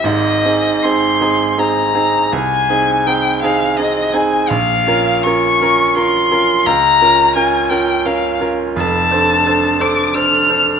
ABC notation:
X:1
M:3/4
L:1/8
Q:1/4=85
K:Ab
V:1 name="Violin"
e2 c'2 b2 | a2 g f e a | f2 d'2 c'2 | b2 a g f z |
[K:Ddor] a3 d' f'2 |]
V:2 name="Grand piano"
[A,,,A,,] [CEA] [CEA] [CEA] [CEA] [CEA] | C,, [CEA] [CEA] [CEA] [CEA] [CEA] | B,,, [DFB] [DFB] [DFB] [DFB] [DFB] | D,, [DFB] [DFB] [DFB] [DFB] [DFB] |
[K:Ddor] [F,,,F,,] [DAc] [DAc] [DAc] [DAc] [DAc] |]